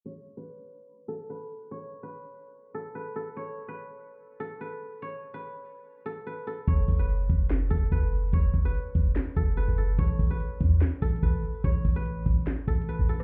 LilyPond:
<<
  \new Staff \with { instrumentName = "Guzheng" } { \time 4/4 \key fis \minor \tempo 4 = 145 cis''8. b'4~ b'16 r8 a'8 b'8 r8 | cis''8. b'4~ b'16 r8 a'8 b'8 a'8 | cis''8. b'4~ b'16 r8 a'8 b'8 r8 | cis''8. b'4~ b'16 r8 a'8 b'8 a'8 |
cis''8. b'4~ b'16 r8 a'8 b'8 r8 | cis''8. b'4~ b'16 r8 a'8 b'8 a'8 | cis''8. b'4~ b'16 r8 a'8 b'8 r8 | cis''8. b'4~ b'16 r8 a'8 b'8 a'8 | }
  \new Staff \with { instrumentName = "808-style bass" } { \clef bass \time 4/4 \key fis \minor r1 | r1 | r1 | r1 |
fis,,8 fis,,4 fis,,4 fis,,8 fis,,4 | fis,,8 fis,,8 r8 fis,,8 r8 fis,,8. fis,,8. | a,,8 a,,8 r8 e,8 r8 a,,8 a,,8 r8 | a,,8 a,,4 a,,8 r8 a,,8. a,,8. | }
  \new DrumStaff \with { instrumentName = "Drums" } \drummode { \time 4/4 r4 r4 r4 r4 | r4 r4 r4 r4 | r4 r4 r4 r4 | r4 r4 r4 r4 |
<hh bd>8 <hho bd>8 hh8 <hh bd>8 \tuplet 3/2 { <hc hh sn>16 r16 r16 <hh bd>16 hh16 hh16 } <hh bd>4 | <hh bd>8 <hh bd>8 hh8 <hh bd>8 <hc hh sn>8 <hh bd>8 r8 hh8 | <hh bd>8 <hho bd>8 hh8 <hh bd>8 \tuplet 3/2 { <hc hh sn>16 r16 r16 <hh bd>16 hh16 hh16 } <hh bd>4 | <hh bd>8 <hho bd>8 hh8 <hh bd>8 \tuplet 3/2 { <hc hh sn>16 r16 r16 <hh bd>16 hh16 hh16 } r8 hh16 <hh ss>16 | }
>>